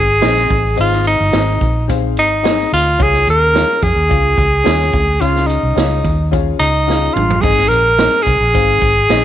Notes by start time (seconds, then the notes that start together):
Already playing: G#1 G#4
0.21 A#1 C4 D#4 G#4 C5 D#5, snare, closed hi-hat
0.37 snare
0.49 A1, kick, open hi-hat
0.76 G#1 G#2 C4 D#4 G#4 C5 D#5, closed hi-hat
0.81 F4
0.92 snare
1.04 D#4, closed hi-hat
1.20 G1
1.32 G#1 C4 D#4 G#4 C5 D#5, snare, closed hi-hat
1.61 A#1, kick, closed hi-hat
1.88 C4 D#4 G#4 C5 F5, kick, closed hi-hat
2.17 G#1 D#4, closed hi-hat
2.43 C4 D#4 G#4 C5 D#5, snare, closed hi-hat
2.72 D2 F4, open hi-hat
2.98 C#2 C#3 C#4 F4 G#4 C#5 F5, kick, closed hi-hat
3.03 G#4
3.14 snare
3.27 D#2 A#4, closed hi-hat
3.53 C#4 F4 G#4 C#5 F5, snare, closed hi-hat
3.83 F2 G#4, kick, closed hi-hat
3.96 D#2
4.09 C#2 C#4 F4 G#4 C#5 F5, kick, closed hi-hat
4.38 C#2, kick, closed hi-hat
4.64 D#2 C#4 F4 G#4 C#5 G#5, snare, closed hi-hat
4.80 snare
4.93 D2, kick, closed hi-hat
5.20 C#2 C#3 C#4 F4 G#4 C#5 F5, closed hi-hat
5.36 snare
5.47 D#4, closed hi-hat
5.63 C2
5.75 C#2 C#4 F4 G#4 C#5 F5, snare, closed hi-hat
6.05 D#2, kick, closed hi-hat
6.31 C#4 F4 G#4 C#5 F5, kick, closed hi-hat
6.60 C#2 D#4, closed hi-hat
6.87 C#4 F4 G#4 C#5 F5, snare
7.14 A1 F4, mid tom
7.30 floor tom
7.42 G#1 G#2 C4 D#4 G#4 C5 D#5, kick, crash
7.58 snare
7.68 A#1 A#4, closed hi-hat
7.98 C4 D#4 G#4 C5 D#5, snare, closed hi-hat
8.22 G#4
8.27 C2, kick, closed hi-hat
8.40 A#1
8.53 G#1 C4 D#4 G#4 C5 F5, kick, closed hi-hat
8.82 G#1, kick, closed hi-hat
9.09 A#1 C4 D#4 G#4 C5 D#5, snare, closed hi-hat